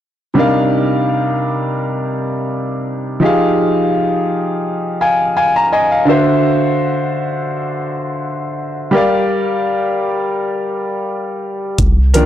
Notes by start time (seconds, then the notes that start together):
0.34 C3 G3 D4 D#4
0.38 A#4 F5
3.20 F3 D#4 G4
3.24 G#4 F5
5.01 F5 G#5
5.37 F5 G#5
5.56 A#5
5.73 D#5 G#5
5.91 F5
6.05 D3 D4 F#4
6.09 C5 E5
8.91 G3 G4 A#4
8.95 D5 F5
11.78 C2, kick, closed hi-hat
12.14 D#3 F3 A#3 D4 A#4, closed hi-hat